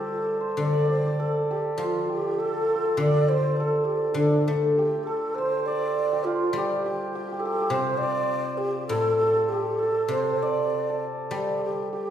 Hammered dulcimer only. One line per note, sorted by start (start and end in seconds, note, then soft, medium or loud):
0.00 0.36 F4 medium
0.00 1.50 G4 soft
0.00 1.19 A4 medium
0.00 0.40 C5 medium
0.00 0.58 D5 medium
0.41 3.05 C5 medium
0.58 0.64 D5 medium
0.65 0.73 D5 soft
0.73 0.82 D5 medium
0.83 0.89 D5 medium
0.89 0.97 D5 medium
0.97 1.06 D5 soft
1.07 2.99 D5 medium
1.20 2.38 A4 medium
1.51 2.09 G4 medium
1.79 5.16 F4 medium
2.09 4.78 G4 medium
2.38 2.45 A4 medium
2.45 2.52 A4 soft
2.53 2.61 A4 soft
2.62 2.68 A4 soft
2.68 2.75 A4 medium
2.75 2.84 A4 medium
2.85 3.60 A4 medium
3.00 5.46 D5 medium
3.31 5.38 C5 medium
3.60 5.06 A4 medium
4.17 7.91 D4 medium
4.79 6.12 G4 medium
5.07 7.99 A4 medium
5.38 7.73 C5 medium
5.67 8.03 D5 medium
6.13 6.58 G4 medium
6.26 9.64 F4 medium
6.58 6.85 G4 medium
6.86 7.15 G4 medium
7.15 7.26 G4 medium
7.27 7.32 G4 soft
7.32 7.39 G4 medium
7.39 7.45 G4 soft
7.45 7.53 G4 medium
7.53 7.61 G4 medium
7.62 9.52 G4 medium
7.73 10.13 C5 medium
7.97 10.20 F5 medium
8.03 10.42 D5 medium
8.92 9.22 A4 medium
9.22 9.82 A4 medium
9.52 11.31 G4 medium
9.83 10.89 A4 medium
10.13 12.10 C5 medium
10.43 12.10 D5 medium
10.90 12.10 A4 medium
11.32 11.92 G4 medium
11.93 12.10 G4 medium